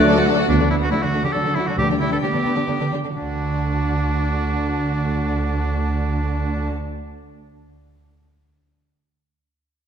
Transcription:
Already playing: D2 D3 F#3 A3 D4 F#4 D5 F#6
0.04 F#3 D4 A4 D5
0.15 A3 F#4 F#5
0.27 F#3 D4 A4 D5
0.38 A3 F#4 F#5
0.49 D2 D3 B3 D4 A4 F#5
0.60 D3 D4 F#4
0.71 D3 D4 E4
0.82 D3 D4 F#4 A4
0.91 D3 A3 D4 E4 F#4
1.03 D3 D4 F#4
1.14 D3 D4 A4
1.24 D3 D4 F#4 G4
1.32 D3 F#3 D4 A4
1.45 D3 D4 A4
1.55 D3 E4
1.59 D4 F#4
1.67 D3 D4 F#4
1.77 D2 D3 G3 D4 G4 B4 G5
1.89 D3 D4 G4
1.99 D3 D4 E4
2.10 D3 D4 A4 B4
2.21 D3 B3 D4 G4
2.34 D3 D4
2.44 D3 D4 B4
2.56 D3 D4 G4
2.68 D3 B3 D4
2.80 D3 D4 B4
2.92 D3 D4 G4
3.04 D3 D4
3.16 D2 D3 D4 F#4 A5

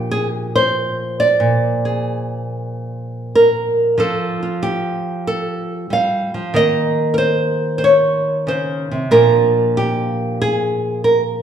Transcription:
Already playing: A#2 F3 D4 F4 G4
0.11 G#4
0.55 C5
1.20 D5
1.40 A#2
1.85 G#4
3.35 A#4
3.98 F3 F4 A4
4.43 F4
4.63 G4
5.27 A4
5.90 G3 F5
6.34 F3
6.54 D#3 A#3 A#4 D#5
7.14 A#4
7.18 C5
7.78 C5
7.84 C#5
8.47 C#3 C5
8.91 C3
9.11 A#2 F3 D4 F4 A#4
9.77 G4
10.42 G#4
11.04 A#4

